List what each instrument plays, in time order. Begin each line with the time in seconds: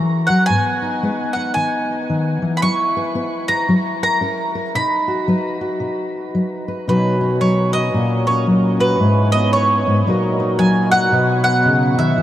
Already playing: steel-string acoustic guitar E3 F#4 A#4, mandolin A#5
0.27 steel-string acoustic guitar F#3, mandolin F#5
0.46 steel-string acoustic guitar G#2, mandolin G#5
0.50 steel-string acoustic guitar B3
0.82 steel-string acoustic guitar D#4
1.03 steel-string acoustic guitar G#3 B4
1.33 steel-string acoustic guitar D#4, mandolin F#5
1.54 steel-string acoustic guitar D#3, mandolin G#5
2.10 steel-string acoustic guitar D#3
2.42 steel-string acoustic guitar E3
2.57 mandolin B5
2.62 steel-string acoustic guitar F#3 E4, mandolin C#6
2.97 steel-string acoustic guitar B4
3.15 steel-string acoustic guitar B3 B4
3.48 steel-string acoustic guitar B4, mandolin A#5
3.69 steel-string acoustic guitar F#3 E4
4.03 steel-string acoustic guitar A#4, mandolin A#5
4.21 steel-string acoustic guitar C#4 A#4
4.55 steel-string acoustic guitar A#4
4.75 steel-string acoustic guitar B2 D#4, mandolin B5
5.08 steel-string acoustic guitar F#4
5.28 steel-string acoustic guitar F#3 B4
5.61 steel-string acoustic guitar F#4
5.80 steel-string acoustic guitar B2
6.35 steel-string acoustic guitar F#3
6.68 steel-string acoustic guitar B4
6.87 steel-string acoustic guitar B2 F#3 D#4 F#4, accordion D#3 C#4 B4, mandolin B4
7.21 steel-string acoustic guitar D#4
7.41 steel-string acoustic guitar F#3, mandolin C#5
7.73 steel-string acoustic guitar F#4, mandolin D#5
7.93 accordion A#2 F#3 A#4, steel-string acoustic guitar A#2
8.27 steel-string acoustic guitar C#4, mandolin C#5
8.47 steel-string acoustic guitar F#3
8.80 steel-string acoustic guitar F#4, mandolin B4
8.99 accordion G#2 E3 C#4 B4, steel-string acoustic guitar G#2
9.32 steel-string acoustic guitar B3, mandolin D#5
9.53 mandolin C#5
9.87 steel-string acoustic guitar G#2
10.06 steel-string acoustic guitar A#2 F#3 D#4 F#4 A#4, accordion A#2 F#3 D#4 A#4
10.40 steel-string acoustic guitar D#4
10.59 steel-string acoustic guitar F#3, mandolin G#5
10.91 steel-string acoustic guitar F#4, mandolin F#5
11.12 steel-string acoustic guitar B2, accordion B4
11.44 steel-string acoustic guitar B3, mandolin F#5
11.65 steel-string acoustic guitar C#3
11.98 steel-string acoustic guitar D#3, mandolin E5
12.18 steel-string acoustic guitar E3